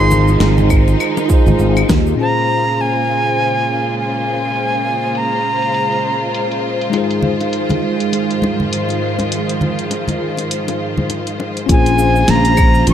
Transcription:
Already playing: G#1 D#3 F3 G#3 D#4 F4 G#4 C5 C6
0.11 high bongo, low conga, cabasa
0.28 high conga, cabasa
0.40 G#1, snare, high bongo, cabasa
0.58 high conga, low conga, cabasa
0.70 kick, cabasa, claves
0.88 high bongo, cabasa
1.00 cabasa, claves
1.17 high bongo, cabasa
1.25 D#4 F4
1.30 G#4, kick, cabasa
1.34 C5
1.46 G#1, high conga, low conga, cabasa
1.59 G#1, high bongo, cabasa
1.77 cabasa, claves
1.89 D#2, kick, snare, high bongo, cabasa
2.06 cabasa
2.15 A#2 C#3 G#3 A#3 C#4 F4 C5
2.21 G#4 C5 A#5
2.78 G#5, closed hi-hat
3.55 closed hi-hat
3.97 G#5, closed hi-hat
4.14 closed hi-hat
4.44 closed hi-hat
4.56 closed hi-hat
4.73 closed hi-hat
5.02 closed hi-hat
5.15 A#5, closed hi-hat
5.33 closed hi-hat
5.62 closed hi-hat
5.74 closed hi-hat
5.92 closed hi-hat
6.35 closed hi-hat
6.52 closed hi-hat
6.81 closed hi-hat
6.90 G#2 D#3 F3 G#3 D#4 F4, closed hi-hat, high bongo
6.96 G#4 C5
7.11 closed hi-hat
7.22 low conga
7.40 closed hi-hat, high bongo
7.53 closed hi-hat
7.69 closed hi-hat, high bongo, high conga, low conga
8.00 closed hi-hat
8.13 closed hi-hat, high bongo
8.31 closed hi-hat
8.42 high bongo, high conga
8.60 low conga
8.73 closed hi-hat
8.89 closed hi-hat, high bongo
9.19 closed hi-hat, high bongo, high conga
9.32 closed hi-hat
9.49 closed hi-hat
9.61 high bongo, low conga
9.79 closed hi-hat
9.91 closed hi-hat, high bongo
10.08 closed hi-hat, high conga, low conga
10.37 closed hi-hat, high bongo
10.51 closed hi-hat
10.68 closed hi-hat, high bongo
10.97 high conga, low conga
11.10 closed hi-hat, high bongo
11.27 closed hi-hat
11.40 high bongo
11.57 closed hi-hat
11.66 A#1 C#3 G#3 A#3 C#4 F4 C5, kick, closed hi-hat, cabasa
11.72 G#4 C5 G#5
11.86 closed hi-hat, cabasa
11.99 cabasa
12.16 cabasa
12.28 A#1 A#5, snare, closed hi-hat, cabasa
12.45 closed hi-hat, cabasa
12.57 kick, cabasa, claves
12.74 cabasa
12.87 A#1 C#6, closed hi-hat, cabasa

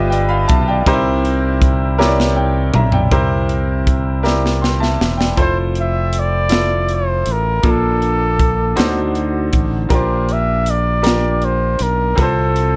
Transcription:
Already playing: G1 G2 F4 G4 B4 D5 D#5 E5
0.10 D5 G5, closed hi-hat
0.29 F5 B5
0.48 B1 E5 A5, kick, closed hi-hat
0.68 D5 G5
0.86 C2 C3 D#4 G4 A#4 C5, kick, closed hi-hat
0.93 E4
1.25 closed hi-hat
1.62 kick, closed hi-hat
1.98 E4 G4 A#4 C#5, snare
2.06 D5
2.20 snare
2.36 D5 G5
2.74 B1 E5 A#5, mid tom
2.92 D5 G5, floor tom
3.11 C2 C3 E4 G4 A#4 C5, kick, closed hi-hat
3.49 closed hi-hat
3.87 kick, closed hi-hat
4.23 E4 G4 A#4 D5, snare
4.46 snare
4.62 G5 C6, snare
4.80 E5 A5, snare
5.01 E1, snare
5.17 D5 G5, snare
5.36 F1 E4 F4 A4 C5, kick, closed hi-hat
5.42 C5
5.75 closed hi-hat
5.80 E5
6.13 closed hi-hat
6.19 D5
6.49 E4 F4 A4 D5, snare, closed hi-hat
6.89 closed hi-hat
6.95 C5
7.26 A1, closed hi-hat
7.32 A#4
7.62 A#1 A#2 A#3 D4 F4 A4, kick, closed hi-hat
7.70 A4
8.02 closed hi-hat
8.39 kick, closed hi-hat
8.75 D2 D3 D4 D#4 F#4 C5, closed hi-hat
8.80 snare
9.15 closed hi-hat
9.53 A1, kick, closed hi-hat
9.89 A#1 A#2 D4 F4 G4 A#4, kick, closed hi-hat
9.94 C5
10.29 E5, closed hi-hat
10.66 D5, closed hi-hat
11.02 D4 F4 G4 A#4, closed hi-hat
11.07 snare
11.42 C5, closed hi-hat
11.79 B1 A#4, closed hi-hat
12.15 C2 C3 C4 F4 A4 B4, kick, closed hi-hat
12.21 A4 C5
12.56 closed hi-hat

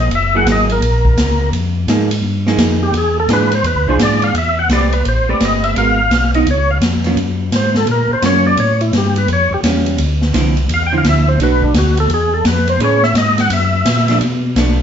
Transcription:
0.00 D#5
0.10 F#1, ride
0.15 E5
0.34 F#3 A#3 E4 G#4 F#5
0.45 G#1, snare, hi-hat pedal, ride
0.52 D#5
0.69 A#4, ride
0.81 A#1, ride
1.05 kick
1.17 C#2, snare, hi-hat pedal, ride
1.52 F2, ride
1.87 G#2 F3 A#3 D#4 G#4, snare, hi-hat pedal, ride
2.11 ride
2.22 G2
2.47 F3 A#3 D#4 G#4, snare
2.57 F2, snare, hi-hat pedal, ride
2.83 G4
2.93 E2, ride
2.97 G#4
3.20 A4
3.28 G#2 E3 D4 F4 G#4, snare, hi-hat pedal, ride
3.33 B4
3.52 C5, ride
3.63 E2 B4, ride
3.75 D2
3.87 B1 E3 D4 F4 G#4 C5
3.98 G#2, snare, hi-hat pedal, ride
4.03 D5
4.22 F5, ride
4.34 E2, ride
4.38 E5
4.59 F#5
4.69 C2 A3 C4 G4 B4 D5, snare, hi-hat pedal, ride
4.92 B4, ride
5.05 A1 C5, ride
5.28 A1 A3 C4 G4 B4 D5
5.40 G1, snare, hi-hat pedal, ride
5.45 D#5
5.64 E5, ride
5.75 G#1 G#3 B3 F#4 A#4 F5, ride
6.10 B1, snare, hi-hat pedal, ride
6.34 B3 D#4 F4 D#5, ride
6.45 C#2, ride
6.51 C#5
6.71 F5
6.81 F2, snare, hi-hat pedal, ride
7.04 F#3 A#3 C#4 F4, snare, ride
7.16 F#2, ride
7.51 G#2, snare, hi-hat pedal, ride
7.56 C5
7.75 A4, snare
7.86 A#2, ride
7.92 A#4
8.09 A#2 C5
8.22 F#2 F#3 A#3 C#4 F4 C#5, snare, hi-hat pedal, ride
8.47 D5
8.57 A2 C#5, ride
8.81 E4, ride
8.93 G2, snare, hi-hat pedal, ride
8.98 G4
9.16 B4, ride
9.27 F2, ride
9.33 C#5
9.51 F2 G4
9.63 E2 G3 C#4 F4, snare, hi-hat pedal, ride
9.86 ride
9.98 D2, ride
10.22 snare
10.34 C2 D3 F3 C4 E4, snare, hi-hat pedal, ride
10.57 ride
10.68 E2, ride
10.74 F5
10.87 G5
10.92 D3 F3 C4 E4
10.98 F5
11.04 D2, snare, hi-hat pedal, ride
11.09 E5
11.28 C5
11.38 B1 A3 D4 F#4, ride
11.43 B4
11.62 D4, kick
11.73 D2, snare, hi-hat pedal, ride
11.78 F#4
11.97 A4, ride
12.09 E2, ride
12.14 G#4
12.34 A4
12.44 F2 B4, snare, hi-hat pedal, ride
12.67 C5, ride
12.79 A2 A3 C#4 G#4 B4, ride
12.84 C#5
13.03 E5, snare
13.14 G#2 D#5, snare, hi-hat pedal, ride
13.38 F#5, snare, ride
13.50 F#2 E5, ride
13.85 A#2, snare, hi-hat pedal, ride
13.97 snare
14.08 F3 A3 D4, snare, ride
14.20 B2, ride
14.55 B1 F3 A3 D4, snare, hi-hat pedal, ride

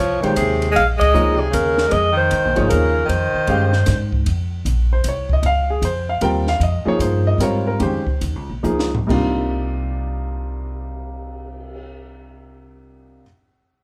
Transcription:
Already playing: F3 C#5
0.00 C2
0.21 A#2 D#3 G#3 G4 C5 C#5 G5, muted upright bass stroke, ride
0.35 D#2 C3 G#4, hi-hat pedal, ride
0.62 ride
0.72 G#3
0.76 A#1 F5, ride
0.97 G#3 D#5, ride
1.01 kick
1.14 C#2 F3 A#3 D#4 G#4 C#5, hi-hat pedal
1.36 C3 G#4
1.50 D#2 C#3 A#4, hi-hat pedal, ride
1.78 snare
1.88 G#3, ride
1.92 F2 D#5
2.12 D#3
2.17 C5
2.31 C#2, hi-hat pedal, ride
2.45 A#1
2.56 G#1 F3 A#3 D#4 G#4 C#5, ride
2.67 C#3 A#4, hi-hat pedal, ride
2.71 D#2
3.06 F2 D#3 C5, ride
3.34 muted upright bass stroke
3.47 G2 G#3 C#4 G4 C5 F5, ride
3.73 snare
3.86 G#2, snare, hi-hat pedal, ride
4.12 kick
4.26 F2, ride
4.65 A#1, hi-hat pedal, ride
4.93 C5
5.04 C2, hi-hat pedal, ride
5.09 C#5
5.29 D#5, kick
5.43 C#2 F5, ride
5.70 G#4
5.82 F2 C5, hi-hat pedal, ride
6.09 F5
6.21 D#2 G3 C4 F4 A#4 G5, ride
6.47 F5, snare
6.60 F2 D#5, ride
6.85 F3 A#3 D#4 G#4 C#5, muted upright bass stroke
6.99 G2 C5, hi-hat pedal, ride
7.27 D#5
7.38 G#2 G3 C4 F4 A#4, hi-hat pedal, ride
7.43 C#5
7.67 A#4
7.79 F2 D#3 G#3 C#4 G4 C5, ride
8.07 muted upright bass stroke, kick
8.21 D#2, hi-hat pedal, ride
8.35 C#2
8.50 A#1
8.63 C#2 F3 A#3 D#4 G#4, hi-hat pedal
8.79 snare
8.95 floor tom
9.07 C2 C3 G3 A#3 D4 D#4 F4, kick, crash
9.40 cymbal swell

